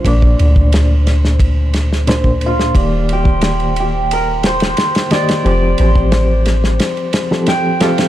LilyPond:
<<
  \new Staff \with { instrumentName = "Hammered dulcimer" } { \time 4/4 \key ees \lydian \tempo 4 = 89 r2. r8 f'8~ | f'8 g'4 g'8 bes'8 c''4 d''8 | d''8 c''4. r4 g''8 f''8 | }
  \new Staff \with { instrumentName = "Synth texture" } { \time 4/4 \key ees \lydian c''1~ | c''1~ | c''1 | }
  \new Staff \with { instrumentName = "Reed electric piano" } { \time 4/4 \key ees \lydian <bes, bes d' d''>2. <bes, bes d' c''>4 | <ees bes g' d''>2.~ <ees bes g' d''>8 <ees bes g' ees''>8 | <f c' g' c''>2~ <f c' g' c''>8. <f c' g' a'>8. <f c' g' a'>8 | }
  \new Staff \with { instrumentName = "808-style bass" } { \clef bass \time 4/4 \key ees \lydian bes,,8 d,2.~ d,8 | ees,,2. r4 | f,,8 a,,4. r2 | }
  \new DrumStaff \with { instrumentName = "Drums" } \drummode { \time 4/4 <bd cymr>16 bd16 cymr16 bd16 <cymr sn>8 <cymr sn>16 sn16 <bd cymr>8 <cymr sn>16 sn16 <cymr sn>16 bd16 cymr16 sn16 | <bd cymr>8 cymr16 bd16 <cymr sn>16 cymr16 cymr8 cymr8 <cymr sn>16 <cymr sn>16 <cymr sn>16 <cymr sn>16 <cymr sn>16 <cymr sn>16 | cymr8 cymr16 bd16 <cymr sn>8 <cymr sn>16 sn16 <cymr sn>16 cymr16 <cymr sn>16 sn16 <cymr sn>8 <cymr sn>16 <cymr sn>16 | }
>>